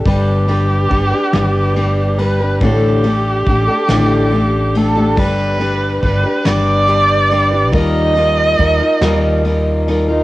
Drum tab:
RD |xxxxxx|xxxxxx|xxxxxx|xxxxxx|
SD |---o--|---o--|---o--|---o--|
BD |o-o---|o-o---|o-o---|o-o---|